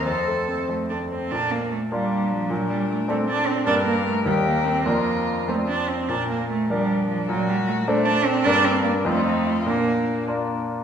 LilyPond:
<<
  \new Staff \with { instrumentName = "Violin" } { \time 6/8 \key bes \major \tempo 4. = 100 c''4. r4. | r4. d'4.~ | d'2. | bes'4. g'4. |
f'2~ f'16 r8. | r4. d'4. | fis'4. d'4.~ | d'4. f'8 ees'8 f'8 |
d'2~ d'16 r8. | }
  \new Staff \with { instrumentName = "Grand piano" } { \time 6/8 \key bes \major f,8 a8 c'8 f,8 a8 c'8 | bes,4. <bes d' f'>4. | bes,4. <c' d' a'>4. | <g, bes d' bes'>4. <ees, bes ees' bes'>4. |
<f, bes d' bes'>4. <f, f c' c''>4. | bes,4. <f d' bes'>4. | bes,4. <a d' c''>4. | <g, bes d' bes'>4. <f, c' ees' f'>4. |
bes,4. <bes d' f'>4. | }
  \new Staff \with { instrumentName = "Cello" } { \time 6/8 \key bes \major a'4. a8 d'8 c'8 | d'8 bes8 a8 g4 f8 | ges8 g8 a8 a8 d'8 c'8 | d'8 bes8 a8 g8 bes8 c'8 |
bes4. a8 d'8 c'8 | d'8 bes8 a8 g4 f8 | fis8 g8 a8 a8 d'8 c'8 | d'8 c'8 bes8 a4. |
bes4. r4. | }
>>